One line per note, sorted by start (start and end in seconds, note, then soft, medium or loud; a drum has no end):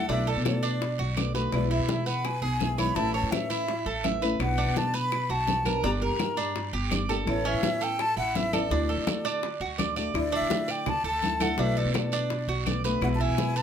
0.09 0.35 B1 loud
0.09 0.44 B2 medium
0.09 0.44 D3 medium
0.09 0.45 A3 medium
0.09 0.45 B3 medium
0.09 0.27 D4 medium
0.09 0.45 F#4 medium
0.09 0.30 E5 loud
0.09 high bongo medium
0.09 high conga soft
0.09 long guiro medium
0.27 0.62 A4 medium
0.27 0.46 D5 medium
0.27 high bongo soft
0.27 high conga soft
0.36 0.96 B2 medium
0.45 0.80 D3 soft
0.45 0.80 A3 soft
0.45 0.80 B3 medium
0.45 0.80 F#4 medium
0.45 1.14 D5 medium
0.45 high bongo medium
0.45 high conga medium
0.45 short guiro medium
0.45 claves medium
0.63 0.98 D4 medium
0.63 high conga soft
0.63 short guiro medium
0.81 muted nylon-string guitar stroke medium
0.81 high bongo medium
0.81 high conga soft
0.81 long guiro medium
0.99 1.50 B1 medium
0.99 1.16 F#4 medium
0.99 high bongo soft
0.99 high conga soft
1.17 1.34 D3 medium
1.17 1.35 A3 medium
1.17 1.34 B3 medium
1.17 1.33 F#4 medium
1.17 1.34 D5 medium
1.17 high bongo soft
1.17 low bongo medium
1.17 high conga medium
1.17 short guiro medium
1.17 claves medium
1.34 1.52 D3 medium
1.34 1.53 A3 medium
1.34 1.52 B3 medium
1.34 1.52 F#4 medium
1.34 1.70 B4 medium
1.34 high bongo soft
1.34 high conga soft
1.34 short guiro medium
1.52 1.78 B1 loud
1.52 1.88 B2 medium
1.52 1.87 E3 medium
1.52 1.88 G#3 medium
1.52 1.89 B3 medium
1.52 1.89 E4 medium
1.52 1.70 D5 medium
1.52 high bongo medium
1.52 high conga soft
1.52 long guiro medium
1.52 claves medium
1.71 2.06 E4 medium
1.71 2.08 E5 medium
1.71 high bongo soft
1.79 2.39 B2 medium
1.88 2.24 E3 medium
1.88 2.24 G#3 medium
1.88 2.25 B3 medium
1.88 2.25 E4 medium
1.88 high bongo medium
1.88 high conga medium
1.88 short guiro medium
2.06 2.41 B4 medium
2.06 2.27 F#5 medium
2.06 high conga soft
2.06 short guiro medium
2.25 2.43 G#5 loud
2.25 muted nylon-string guitar stroke medium
2.25 high bongo medium
2.25 high conga soft
2.25 long guiro medium
2.25 claves medium
2.42 2.93 B1 medium
2.42 2.77 G#4 medium
2.42 2.76 G#5 loud
2.42 high bongo soft
2.42 high conga soft
2.60 2.78 E3 soft
2.60 2.78 G#3 medium
2.60 2.77 B3 medium
2.60 2.77 E4 medium
2.60 high bongo soft
2.60 low bongo medium
2.60 high conga medium
2.60 short guiro medium
2.78 2.94 E3 soft
2.78 2.96 G#3 medium
2.78 2.96 B3 medium
2.78 2.95 E4 medium
2.78 2.96 C#5 medium
2.78 2.97 B5 loud
2.78 high bongo soft
2.78 high conga medium
2.78 short guiro medium
2.78 claves medium
2.95 3.22 A1 loud
2.95 3.31 E3 medium
2.95 3.32 A3 medium
2.95 3.32 C#4 medium
2.95 3.14 E4 medium
2.95 3.32 E4 medium
2.95 3.14 A5 loud
2.95 high bongo medium
2.95 high conga soft
2.95 long guiro medium
3.14 3.49 C#5 medium
3.14 3.33 A5 medium
3.14 high bongo soft
3.14 high conga soft
3.23 3.83 A2 medium
3.31 3.67 E3 medium
3.31 3.67 A3 medium
3.31 3.67 C#4 soft
3.31 3.68 E4 soft
3.31 4.04 E5 medium
3.31 high bongo medium
3.31 high conga medium
3.31 short guiro medium
3.31 claves medium
3.50 3.85 E4 medium
3.50 high conga soft
3.50 short guiro medium
3.68 muted nylon-string guitar stroke medium
3.68 high bongo medium
3.68 high conga soft
3.68 long guiro medium
3.86 4.37 A1 medium
3.86 4.04 A4 medium
3.86 high bongo soft
3.86 high conga soft
4.04 4.21 E3 soft
4.04 4.22 A3 medium
4.04 4.22 C#4 medium
4.04 4.20 E4 medium
4.04 4.21 E5 medium
4.04 high bongo soft
4.04 low bongo medium
4.04 high conga medium
4.04 short guiro medium
4.04 claves medium
4.22 4.40 A3 medium
4.22 4.40 C#4 medium
4.22 4.39 E4 medium
4.22 4.57 B4 medium
4.22 high bongo soft
4.22 high conga soft
4.22 short guiro medium
4.39 4.65 B1 loud
4.39 4.75 B2 medium
4.39 4.75 F#3 medium
4.39 4.75 B3 medium
4.39 4.76 D4 medium
4.39 4.76 F#4 medium
4.39 4.79 F#5 loud
4.39 high bongo medium
4.39 high conga soft
4.39 long guiro medium
4.39 claves medium
4.58 4.93 D4 medium
4.58 high bongo soft
4.58 high conga soft
4.67 5.27 B2 medium
4.76 5.11 F#3 soft
4.76 5.11 B3 soft
4.76 5.11 D4 soft
4.76 5.12 F#4 medium
4.76 4.97 A5 loud
4.76 high bongo medium
4.76 high conga medium
4.76 short guiro medium
4.94 5.29 B4 medium
4.94 5.32 B5 loud
4.94 high conga soft
4.94 short guiro medium
5.12 muted nylon-string guitar stroke medium
5.12 high bongo medium
5.12 high conga soft
5.12 long guiro medium
5.12 claves medium
5.29 5.81 B1 medium
5.29 5.65 F#4 medium
5.29 5.84 A5 loud
5.29 high bongo soft
5.29 high conga soft
5.47 5.65 F#3 medium
5.47 5.65 B3 medium
5.47 5.65 D4 medium
5.47 5.64 F#4 medium
5.47 high bongo soft
5.47 low bongo medium
5.47 high conga medium
5.47 short guiro medium
5.65 5.84 F#3 medium
5.65 5.84 B3 medium
5.65 5.83 D4 medium
5.65 5.83 F#4 medium
5.65 5.83 A#4 medium
5.65 high bongo soft
5.65 high conga medium
5.65 short guiro medium
5.65 claves medium
5.83 6.09 G1 loud
5.83 6.19 D3 medium
5.83 6.18 G3 medium
5.83 6.19 A#3 medium
5.83 6.01 D4 medium
5.83 6.20 D4 medium
5.83 6.20 G4 medium
5.83 5.90 A#5 loud
5.83 high bongo medium
5.83 high conga soft
5.83 long guiro medium
6.02 6.37 A#4 medium
6.02 6.70 A#5 medium
6.02 high bongo soft
6.02 high conga soft
6.11 6.70 G2 medium
6.19 6.55 G3 medium
6.19 6.55 A#3 medium
6.19 6.55 D4 medium
6.19 6.55 G4 medium
6.19 high bongo medium
6.19 high conga medium
6.19 short guiro medium
6.19 claves medium
6.37 6.72 D4 medium
6.37 high conga soft
6.37 short guiro medium
6.56 muted nylon-string guitar stroke medium
6.56 high bongo medium
6.56 high conga soft
6.56 long guiro medium
6.73 7.24 G1 medium
6.73 6.91 G4 medium
6.73 high bongo soft
6.73 high conga soft
6.91 7.08 G3 soft
6.91 7.09 A#3 medium
6.91 7.09 D4 medium
6.91 7.08 G4 medium
6.91 7.09 D5 medium
6.91 high bongo soft
6.91 low bongo medium
6.91 high conga medium
6.91 short guiro medium
6.91 claves medium
7.09 7.26 G3 medium
7.09 7.27 A#3 medium
7.09 7.27 D4 medium
7.09 7.27 G4 medium
7.09 7.44 A4 medium
7.09 high bongo soft
7.09 short guiro medium
7.26 7.53 A1 loud
7.26 7.61 E3 medium
7.26 7.62 B3 medium
7.26 7.63 C#4 medium
7.26 7.63 E4 medium
7.26 7.49 C#5 loud
7.26 high bongo medium
7.26 high conga soft
7.26 long guiro medium
7.26 claves medium
7.45 7.80 C#4 medium
7.45 7.85 E5 medium
7.45 high bongo soft
7.45 high conga soft
7.54 8.14 A2 medium
7.62 7.98 E3 medium
7.62 7.98 B3 medium
7.62 7.98 C#4 medium
7.62 7.98 E4 medium
7.62 high bongo medium
7.62 high conga medium
7.62 short guiro medium
7.81 8.16 A4 medium
7.81 8.02 G5 loud
7.81 high conga soft
7.81 short guiro medium
7.99 8.17 A5 loud
7.99 muted nylon-string guitar stroke medium
7.99 high bongo medium
7.99 high conga soft
7.99 long guiro medium
7.99 claves medium
8.17 8.68 A1 medium
8.17 8.52 E4 medium
8.17 8.38 F#5 loud
8.17 high bongo soft
8.17 high conga soft
8.35 8.52 E3 soft
8.35 8.53 B3 medium
8.35 8.53 C#4 medium
8.35 8.52 E4 medium
8.35 8.55 E5 loud
8.35 high bongo soft
8.35 low bongo medium
8.35 high conga medium
8.35 short guiro medium
8.53 8.71 B3 medium
8.53 8.71 C#4 medium
8.53 8.70 E4 medium
8.53 8.71 A4 medium
8.53 9.79 D5 medium
8.53 high bongo soft
8.53 high conga medium
8.53 short guiro medium
8.53 claves medium
8.70 8.96 D2 loud
8.70 9.05 D3 medium
8.70 9.06 A3 medium
8.70 8.89 D4 medium
8.70 9.07 D4 medium
8.70 9.07 F#4 medium
8.70 high bongo medium
8.70 high conga soft
8.70 long guiro medium
8.89 9.24 A4 medium
8.89 high bongo soft
8.89 high conga soft
8.97 9.57 D3 medium
9.07 9.42 D3 soft
9.07 9.42 A3 medium
9.07 9.42 D4 medium
9.07 9.42 F#4 medium
9.07 high bongo medium
9.07 high conga loud
9.07 short guiro medium
9.07 claves medium
9.25 9.60 D4 medium
9.25 high conga soft
9.25 short guiro medium
9.43 muted nylon-string guitar stroke medium
9.43 high bongo medium
9.43 high conga soft
9.43 long guiro medium
9.60 10.12 D2 medium
9.60 9.78 F#4 medium
9.60 high bongo soft
9.60 high conga soft
9.78 9.96 D3 soft
9.78 9.96 A3 soft
9.78 9.97 D4 medium
9.78 9.96 F#4 medium
9.78 9.95 D5 medium
9.78 high bongo soft
9.78 low bongo medium
9.78 high conga medium
9.78 short guiro medium
9.78 claves medium
9.96 10.13 A3 medium
9.96 10.14 D4 medium
9.96 10.14 F#4 medium
9.96 10.14 D5 medium
9.96 high bongo soft
9.96 high conga soft
9.96 short guiro medium
10.13 10.40 D2 loud
10.13 10.49 D3 medium
10.13 10.50 A3 medium
10.13 10.50 D4 medium
10.13 10.50 E4 medium
10.13 10.33 D5 medium
10.13 high bongo medium
10.13 high conga soft
10.13 long guiro medium
10.13 claves medium
10.32 10.67 D4 medium
10.32 10.72 E5 medium
10.32 high bongo soft
10.32 high conga soft
10.41 11.01 D3 medium
10.50 10.85 D3 soft
10.50 10.86 A3 medium
10.50 10.86 D4 medium
10.50 10.86 E4 medium
10.50 high bongo medium
10.50 high conga loud
10.50 short guiro medium
10.68 11.03 D5 medium
10.68 10.90 G5 loud
10.68 high conga soft
10.68 short guiro medium
10.86 11.05 A5 loud
10.86 muted nylon-string guitar stroke medium
10.86 high bongo medium
10.86 high conga soft
10.86 low conga medium
10.86 long guiro medium
10.86 claves medium
11.04 11.55 D2 medium
11.04 11.39 A4 medium
11.04 11.44 A5 loud
11.04 high bongo soft
11.04 high conga soft
11.22 11.40 D3 soft
11.22 11.40 A3 soft
11.22 11.40 D4 medium
11.22 11.38 E4 medium
11.22 high bongo soft
11.22 low bongo medium
11.22 high conga medium
11.22 short guiro medium
11.40 11.58 A3 medium
11.40 11.58 D4 medium
11.40 11.57 E4 medium
11.40 11.58 A4 medium
11.40 11.61 F#5 medium
11.40 high bongo soft
11.40 high conga medium
11.40 short guiro medium
11.40 claves medium
11.58 11.84 B1 loud
11.58 11.94 B2 medium
11.58 11.93 D3 medium
11.58 11.93 A3 medium
11.58 11.94 B3 medium
11.58 11.76 D4 medium
11.58 11.95 F#4 medium
11.58 11.79 E5 loud
11.58 high bongo medium
11.58 high conga soft
11.58 long guiro medium
11.76 12.11 A4 medium
11.76 11.95 D5 medium
11.76 high bongo soft
11.76 high conga soft
11.85 12.45 B2 medium
11.94 12.29 D3 medium
11.94 12.30 A3 soft
11.94 12.30 B3 medium
11.94 12.30 F#4 medium
11.94 12.63 D5 medium
11.94 high bongo medium
11.94 high conga medium
11.94 short guiro medium
11.94 claves medium
12.12 12.47 D4 medium
12.12 high conga soft
12.12 short guiro medium
12.30 muted nylon-string guitar stroke medium
12.30 high bongo medium
12.30 high conga soft
12.30 long guiro medium
12.48 12.99 B1 medium
12.48 12.66 F#4 medium
12.48 high bongo soft
12.48 high conga soft
12.66 12.84 D3 medium
12.66 12.84 A3 medium
12.66 12.84 B3 medium
12.66 12.83 F#4 medium
12.66 12.84 D5 medium
12.66 high bongo soft
12.66 low bongo medium
12.66 high conga medium
12.66 short guiro medium
12.66 claves medium
12.84 13.02 D3 medium
12.84 13.02 A3 medium
12.84 13.02 B3 medium
12.84 13.02 F#4 medium
12.84 13.19 B4 medium
12.84 high bongo soft
12.84 high conga soft
12.84 short guiro medium
13.01 13.27 B1 loud
13.01 13.37 B2 medium
13.01 13.36 E3 medium
13.01 13.37 G#3 medium
13.01 13.38 B3 medium
13.01 13.38 E4 medium
13.01 13.08 F#5 loud
13.01 high bongo medium
13.01 high conga soft
13.01 long guiro medium
13.01 claves medium
13.15 13.23 A5 medium
13.20 13.55 E4 medium
13.20 13.59 G#5 loud
13.20 high bongo soft
13.20 high conga soft
13.29 13.62 B2 medium
13.38 13.62 E3 medium
13.38 13.62 G#3 soft
13.38 13.62 B3 medium
13.38 13.62 E4 medium
13.38 high bongo medium
13.38 high conga medium
13.38 short guiro medium
13.56 13.62 B4 medium
13.56 13.62 A5 loud
13.56 high conga soft
13.56 short guiro medium